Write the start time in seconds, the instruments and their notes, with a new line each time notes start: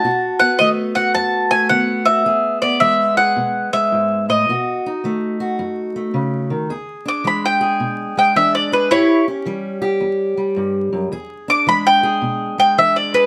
Already playing: mandolin A5
0.04 steel-string acoustic guitar B2 F#4
0.39 steel-string acoustic guitar B3, mandolin F#5
0.59 steel-string acoustic guitar D#3 A3, mandolin D#5
0.95 steel-string acoustic guitar F#4, mandolin F#5
1.14 steel-string acoustic guitar F#2, mandolin A5
1.51 steel-string acoustic guitar A3, mandolin G#5
1.69 steel-string acoustic guitar D#3 B3, mandolin F#5
2.05 steel-string acoustic guitar F#4, mandolin E5
2.25 steel-string acoustic guitar E2 G#4
2.62 steel-string acoustic guitar B3, mandolin D5
2.80 steel-string acoustic guitar E3 G#3, mandolin E5
3.17 steel-string acoustic guitar G#4, mandolin F#5
3.36 steel-string acoustic guitar B2
3.73 steel-string acoustic guitar G#3, mandolin E5
3.92 steel-string acoustic guitar G#2
4.29 steel-string acoustic guitar A2, mandolin D#5
4.49 steel-string acoustic guitar B2 F#4
4.86 steel-string acoustic guitar D#4
5.04 steel-string acoustic guitar D#3 A3
5.40 steel-string acoustic guitar F#4
5.59 steel-string acoustic guitar F#2
5.96 steel-string acoustic guitar A3
6.14 steel-string acoustic guitar C#3
6.50 steel-string acoustic guitar D#3
6.70 steel-string acoustic guitar E2 G#4
7.05 steel-string acoustic guitar D4, mandolin D6
7.24 steel-string acoustic guitar E3 G#3, mandolin B5
7.45 mandolin G5
7.61 steel-string acoustic guitar G#4
7.80 steel-string acoustic guitar B2
8.17 steel-string acoustic guitar G#3, mandolin G5
8.36 steel-string acoustic guitar E3 D4, mandolin E5
8.55 mandolin D5
8.72 steel-string acoustic guitar G#4, mandolin B4
8.91 steel-string acoustic guitar A2 G4, mandolin E4 C#5
9.28 steel-string acoustic guitar C#4
9.46 steel-string acoustic guitar E3 G3
9.82 steel-string acoustic guitar G4
10.00 steel-string acoustic guitar E2
10.37 steel-string acoustic guitar G3
10.56 steel-string acoustic guitar G2
10.93 steel-string acoustic guitar F#2
11.12 steel-string acoustic guitar E2 G#4
11.48 steel-string acoustic guitar D4, mandolin D6
11.67 steel-string acoustic guitar E3 G#3, mandolin B5
11.87 mandolin G5
12.03 steel-string acoustic guitar G#4
12.22 steel-string acoustic guitar B2
12.58 steel-string acoustic guitar G#3, mandolin G5
12.78 steel-string acoustic guitar E3 D4, mandolin E5
12.96 mandolin D5
13.14 steel-string acoustic guitar G#4, mandolin B4